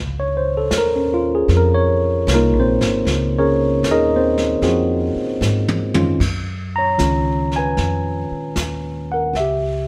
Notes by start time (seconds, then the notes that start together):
Already playing: C#2
0.20 C#5
0.37 C5
0.57 A4
0.71 D#2, snare, hi-hat pedal
0.78 A#4
0.96 C#4
1.14 F4
1.35 G#4
1.48 F2, brush sweep, snare
1.57 A#4
1.74 C#5
2.27 C2, snare, hi-hat pedal
2.34 A#3 D#4 F4 A#4
2.53 A#1
2.60 C4 C5
2.79 G#1, snare
3.05 C#2, brush sweep, snare
3.39 C#4 G#4 A#4 C#5
3.83 D#2, snare, hi-hat pedal
3.91 D#4 G#4 A#4 D#5
4.16 C4 C5
4.38 snare
4.62 F2 C4 F4 F#4 G#4, brush sweep, snare
5.16 muted upright bass stroke
5.41 G#2, snare, hi-hat pedal
5.68 high tom
5.94 F#2 D#3 G#3 C#4 F4, high tom
6.20 F#2, brush sweep, kick, snare, crash
6.76 C#5 A#5
6.98 C#2 D#3 G#3 C#4 F4, snare, hi-hat pedal
7.52 snare
7.56 B4 G#5
7.77 F2, brush sweep, snare
8.31 muted upright bass stroke
8.56 D#2, snare, hi-hat pedal
9.12 A#4 F#5
9.33 C#2 E5, brush sweep, snare
9.40 G4